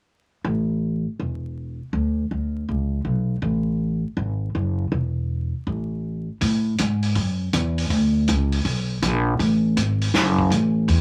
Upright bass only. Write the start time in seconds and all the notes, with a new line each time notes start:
0.45 A1
1.19 E1
1.93 D2
2.31 D2
2.69 C#2
3.05 B1
3.42 A1
4.17 G#1
4.55 F#1
4.92 E1
5.67 A1
6.41 A2
6.79 G#2
7.16 F#2
7.53 E2
7.90 D2
8.29 C#2
8.65 B1
9.02 A#1
9.39 A1
9.77 G#1
10.14 F#1
10.50 A1
10.88 E2